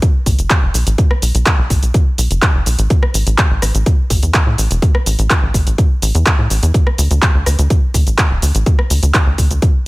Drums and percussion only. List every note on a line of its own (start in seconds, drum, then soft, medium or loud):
0.02 kick loud
0.02 closed hi-hat medium
0.02 shaker soft
0.26 kick medium
0.26 open hi-hat loud
0.26 shaker medium
0.39 closed hi-hat medium
0.39 shaker soft
0.50 kick loud
0.50 clap loud
0.50 closed hi-hat medium
0.50 shaker soft
0.74 open hi-hat loud
0.74 shaker medium
0.87 closed hi-hat medium
0.87 shaker soft
0.98 kick loud
0.98 closed hi-hat medium
0.98 shaker soft
1.11 cross-stick medium
1.22 open hi-hat loud
1.22 shaker medium
1.35 closed hi-hat medium
1.35 shaker soft
1.46 kick loud
1.46 clap loud
1.46 closed hi-hat medium
1.46 shaker soft
1.70 kick medium
1.70 open hi-hat loud
1.70 shaker medium
1.83 closed hi-hat medium
1.83 shaker soft
1.94 kick loud
1.94 closed hi-hat medium
1.94 shaker soft
2.18 open hi-hat loud
2.18 shaker medium
2.31 closed hi-hat medium
2.31 shaker soft
2.42 kick loud
2.42 clap loud
2.42 closed hi-hat medium
2.42 shaker soft
2.66 open hi-hat loud
2.66 shaker medium
2.79 closed hi-hat medium
2.79 shaker soft
2.90 kick loud
2.90 closed hi-hat medium
2.90 shaker soft
3.03 cross-stick medium
3.14 open hi-hat loud
3.14 shaker medium
3.27 closed hi-hat medium
3.27 shaker soft
3.38 kick loud
3.38 clap loud
3.38 closed hi-hat medium
3.38 shaker soft
3.62 cross-stick medium
3.62 open hi-hat loud
3.62 shaker medium
3.75 closed hi-hat medium
3.75 shaker soft
3.86 kick loud
3.86 closed hi-hat medium
3.86 shaker soft
4.10 kick medium
4.10 open hi-hat loud
4.10 shaker medium
4.23 closed hi-hat medium
4.23 shaker soft
4.34 kick loud
4.34 clap loud
4.34 closed hi-hat medium
4.34 shaker soft
4.58 open hi-hat loud
4.58 shaker medium
4.71 closed hi-hat medium
4.71 shaker soft
4.82 kick loud
4.82 closed hi-hat soft
4.82 shaker soft
4.95 cross-stick medium
5.06 open hi-hat loud
5.06 shaker medium
5.19 closed hi-hat medium
5.19 shaker soft
5.30 kick loud
5.30 clap loud
5.30 closed hi-hat medium
5.30 shaker soft
5.54 kick medium
5.54 open hi-hat loud
5.54 shaker medium
5.67 closed hi-hat medium
5.67 shaker soft
5.78 kick loud
5.78 closed hi-hat medium
5.78 shaker soft
6.02 open hi-hat loud
6.02 shaker medium
6.15 closed hi-hat medium
6.15 shaker soft
6.26 kick loud
6.26 clap loud
6.26 closed hi-hat medium
6.26 shaker soft
6.50 open hi-hat loud
6.50 shaker medium
6.63 closed hi-hat medium
6.63 shaker soft
6.74 kick loud
6.74 closed hi-hat medium
6.74 shaker soft
6.87 cross-stick medium
6.98 open hi-hat loud
6.98 shaker medium
7.11 closed hi-hat medium
7.11 shaker soft
7.22 kick loud
7.22 clap loud
7.22 closed hi-hat medium
7.22 shaker soft
7.46 cross-stick medium
7.46 open hi-hat loud
7.46 shaker medium
7.59 closed hi-hat medium
7.59 shaker soft
7.70 kick loud
7.70 closed hi-hat medium
7.70 shaker soft
7.94 kick medium
7.94 open hi-hat loud
7.94 shaker medium
8.07 closed hi-hat medium
8.07 shaker soft
8.18 kick loud
8.18 clap loud
8.18 closed hi-hat medium
8.18 shaker soft
8.42 open hi-hat loud
8.42 shaker medium
8.55 closed hi-hat medium
8.55 shaker soft
8.66 kick loud
8.66 closed hi-hat medium
8.66 shaker soft
8.79 cross-stick medium
8.90 open hi-hat loud
8.90 shaker medium
9.03 closed hi-hat medium
9.03 shaker soft
9.14 kick loud
9.14 clap loud
9.14 closed hi-hat medium
9.14 shaker soft
9.38 kick medium
9.38 open hi-hat loud
9.38 shaker medium
9.51 closed hi-hat medium
9.51 shaker soft
9.62 kick loud
9.62 closed hi-hat medium
9.62 shaker soft